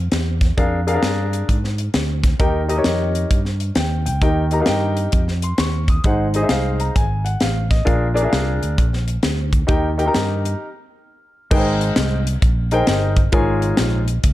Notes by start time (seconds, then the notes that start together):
0.12 E2, snare, closed hi-hat
0.41 kick, snare, closed hi-hat
0.57 F2 D4 G#4 A#4 F5, kick, closed hi-hat
0.87 D4 G#4 A#4 F5, closed hi-hat
0.93 D4 G#4 A#4 F5
1.03 G2, snare, closed hi-hat
1.33 closed hi-hat
1.49 G#2, kick, closed hi-hat
1.64 snare
1.78 closed hi-hat
1.94 D2, snare, closed hi-hat
2.24 kick, snare, closed hi-hat
2.39 D#2 D#3 D#4 G4 A#4 G5, kick, closed hi-hat
2.68 D#4 G4 A#4 D#5, closed hi-hat
2.77 D#4 G4 A#4 C#5
2.84 F2, snare, closed hi-hat
3.15 closed hi-hat
3.31 G2, kick, closed hi-hat
3.45 snare
3.60 closed hi-hat
3.75 D#2 G5, snare, closed hi-hat
4.06 C#2 G5, closed hi-hat
4.22 D#2 D#3 D#4 G4 A#4 G5, kick, closed hi-hat
4.51 D#4 G4 A#4 A#5, closed hi-hat
4.60 D#4 G4 A#4 F5
4.66 G2 G5, snare, closed hi-hat
4.97 closed hi-hat
5.12 F2, kick, closed hi-hat
5.28 snare
5.42 C6, closed hi-hat
5.58 D#2 C#6, snare, closed hi-hat
5.88 D#6, kick, closed hi-hat
6.04 G#1 G#2 D#4 G#4 C5 F#5, kick, closed hi-hat
6.34 D#4 G#4 C5 D#5, closed hi-hat
6.42 D#4 G#4 C5 E5
6.49 C2 F5, snare, closed hi-hat
6.80 A#5, closed hi-hat
6.96 G#1 G#5, kick, closed hi-hat
7.25 F#5, closed hi-hat
7.40 A1 F5, snare, closed hi-hat
7.71 D#5, kick, snare, closed hi-hat
7.85 A#1 A#2 D4 G#4 A#4 F5, kick, closed hi-hat
8.14 D4 G#4 A#4 D5, closed hi-hat
8.22 D4 G#4 A#4 E5
8.29 C2 F5, snare, closed hi-hat
8.63 D2, closed hi-hat
8.78 A#1, kick, closed hi-hat
8.93 snare
9.08 closed hi-hat
9.23 D2, snare, closed hi-hat
9.53 kick, closed hi-hat
9.67 D#2 D#3 D#4 G4 A#4 G5, kick, closed hi-hat
9.98 D#4 G4 A#4 G5, closed hi-hat
10.06 D#4 G4 A#4 A#5
10.14 G2, snare, closed hi-hat
10.45 closed hi-hat
11.51 G#1 G#2 D#4 G#4 A#4 B4 G5, kick, crash
11.57 C5
11.81 closed hi-hat
11.96 C2, snare, closed hi-hat
12.27 closed hi-hat
12.42 A#1, kick, closed hi-hat
12.71 D#4 G#4 A#4 C5 G5, closed hi-hat
12.87 G1, snare, closed hi-hat
13.16 kick, closed hi-hat
13.32 G#1 G#2 F4 G#4 A#4 C#5 G#5, kick, closed hi-hat
13.62 closed hi-hat
13.77 A#1, snare, closed hi-hat
14.08 closed hi-hat
14.24 C#2, kick, closed hi-hat